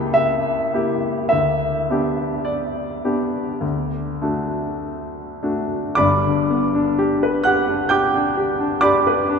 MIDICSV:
0, 0, Header, 1, 2, 480
1, 0, Start_track
1, 0, Key_signature, 1, "major"
1, 0, Tempo, 1142857
1, 554, Time_signature, 4, 2, 24, 8
1, 1521, Tempo, 1183432
1, 2481, Tempo, 991736
1, 2961, Tempo, 925926
1, 4211, End_track
2, 0, Start_track
2, 0, Title_t, "Grand piano"
2, 0, Program_c, 0, 0
2, 0, Control_c, 0, 64, 127
2, 0, Note_on_c, 0, 37, 54
2, 0, Note_on_c, 0, 58, 34
2, 0, Note_on_c, 0, 64, 34
2, 0, Note_on_c, 0, 67, 36
2, 0, Note_on_c, 0, 79, 77
2, 57, Note_on_c, 0, 76, 72
2, 74, Note_off_c, 0, 79, 0
2, 295, Note_off_c, 0, 58, 0
2, 295, Note_off_c, 0, 64, 0
2, 296, Note_off_c, 0, 67, 0
2, 310, Note_on_c, 0, 58, 32
2, 311, Note_on_c, 0, 64, 35
2, 315, Note_on_c, 0, 67, 37
2, 535, Note_off_c, 0, 76, 0
2, 536, Note_off_c, 0, 58, 0
2, 537, Note_off_c, 0, 64, 0
2, 538, Note_off_c, 0, 67, 0
2, 541, Note_on_c, 0, 76, 65
2, 554, Note_on_c, 0, 38, 43
2, 563, Control_c, 0, 64, 0
2, 564, Note_off_c, 0, 37, 0
2, 649, Control_c, 0, 64, 127
2, 792, Note_off_c, 0, 38, 0
2, 797, Note_on_c, 0, 59, 32
2, 800, Note_on_c, 0, 62, 34
2, 804, Note_on_c, 0, 67, 35
2, 1028, Note_on_c, 0, 74, 51
2, 1034, Note_off_c, 0, 76, 0
2, 1261, Note_off_c, 0, 59, 0
2, 1263, Note_off_c, 0, 62, 0
2, 1265, Note_off_c, 0, 67, 0
2, 1278, Note_on_c, 0, 59, 32
2, 1281, Note_on_c, 0, 62, 30
2, 1281, Note_on_c, 0, 67, 35
2, 1503, Note_off_c, 0, 59, 0
2, 1504, Note_off_c, 0, 67, 0
2, 1505, Note_off_c, 0, 62, 0
2, 1516, Note_on_c, 0, 38, 43
2, 1529, Control_c, 0, 64, 0
2, 1626, Control_c, 0, 64, 127
2, 1752, Note_off_c, 0, 38, 0
2, 1762, Note_on_c, 0, 57, 31
2, 1764, Note_on_c, 0, 62, 28
2, 1767, Note_on_c, 0, 66, 32
2, 1999, Note_off_c, 0, 74, 0
2, 2236, Note_off_c, 0, 57, 0
2, 2237, Note_off_c, 0, 62, 0
2, 2239, Note_off_c, 0, 66, 0
2, 2254, Note_on_c, 0, 57, 30
2, 2254, Note_on_c, 0, 62, 32
2, 2257, Note_on_c, 0, 66, 36
2, 2466, Note_off_c, 0, 57, 0
2, 2466, Note_off_c, 0, 62, 0
2, 2467, Note_off_c, 0, 66, 0
2, 2467, Note_on_c, 0, 86, 77
2, 2473, Note_on_c, 0, 83, 52
2, 2475, Note_on_c, 0, 31, 45
2, 2475, Note_on_c, 0, 74, 55
2, 2481, Note_on_c, 0, 43, 45
2, 2491, Control_c, 0, 64, 0
2, 2563, Control_c, 0, 64, 127
2, 2611, Note_on_c, 0, 50, 38
2, 2729, Note_on_c, 0, 59, 38
2, 2801, Note_off_c, 0, 50, 0
2, 2849, Note_on_c, 0, 62, 42
2, 2916, Note_off_c, 0, 59, 0
2, 2964, Note_on_c, 0, 67, 45
2, 3036, Note_off_c, 0, 62, 0
2, 3090, Note_on_c, 0, 71, 44
2, 3158, Note_off_c, 0, 67, 0
2, 3179, Note_off_c, 0, 83, 0
2, 3180, Note_off_c, 0, 74, 0
2, 3196, Note_off_c, 0, 86, 0
2, 3197, Note_on_c, 0, 90, 78
2, 3204, Note_on_c, 0, 78, 64
2, 3215, Note_on_c, 0, 67, 43
2, 3282, Note_off_c, 0, 71, 0
2, 3331, Note_on_c, 0, 62, 36
2, 3404, Note_off_c, 0, 67, 0
2, 3429, Note_off_c, 0, 78, 0
2, 3433, Note_on_c, 0, 91, 75
2, 3437, Note_on_c, 0, 79, 57
2, 3441, Note_on_c, 0, 86, 59
2, 3443, Note_off_c, 0, 90, 0
2, 3445, Note_on_c, 0, 67, 47
2, 3521, Note_off_c, 0, 62, 0
2, 3564, Note_on_c, 0, 62, 44
2, 3637, Note_off_c, 0, 67, 0
2, 3683, Note_on_c, 0, 67, 41
2, 3755, Note_off_c, 0, 62, 0
2, 3802, Note_on_c, 0, 62, 41
2, 3874, Note_off_c, 0, 67, 0
2, 3897, Note_off_c, 0, 79, 0
2, 3899, Note_off_c, 0, 86, 0
2, 3909, Note_on_c, 0, 86, 88
2, 3913, Note_on_c, 0, 74, 66
2, 3914, Note_on_c, 0, 83, 62
2, 3916, Note_off_c, 0, 91, 0
2, 3921, Note_on_c, 0, 67, 45
2, 3994, Note_off_c, 0, 62, 0
2, 4044, Note_on_c, 0, 71, 47
2, 4114, Note_off_c, 0, 67, 0
2, 4161, Note_on_c, 0, 62, 44
2, 4211, Note_off_c, 0, 31, 0
2, 4211, Note_off_c, 0, 43, 0
2, 4211, Note_off_c, 0, 62, 0
2, 4211, Note_off_c, 0, 71, 0
2, 4211, Note_off_c, 0, 74, 0
2, 4211, Note_off_c, 0, 83, 0
2, 4211, Note_off_c, 0, 86, 0
2, 4211, End_track
0, 0, End_of_file